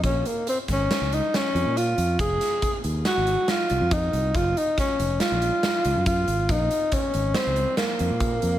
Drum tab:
HH |xxxxxxxxxx|xxxxxxxxxx|xxxxxxxxxx|xxxxxxxxxx|
SD |---oo-o---|-o--o-o---|--o-o-o---|----o-o---|
BD |o--o------|o-o-----o-|o-o-----o-|o-o-----o-|